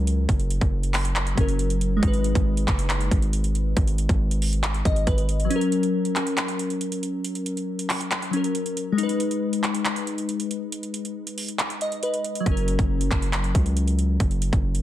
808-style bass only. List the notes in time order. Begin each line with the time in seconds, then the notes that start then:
Already playing: C#2
0.29 F#1
0.61 F#1
1.37 F#1
2.03 G#1
2.35 G#1
2.68 F#1
3.11 G#1
3.77 G#1
4.09 G#1
4.85 G#1
5.07 G#1
12.46 F#1
12.79 F#1
13.11 F#1
13.55 C#2
14.20 F#1
14.53 F#1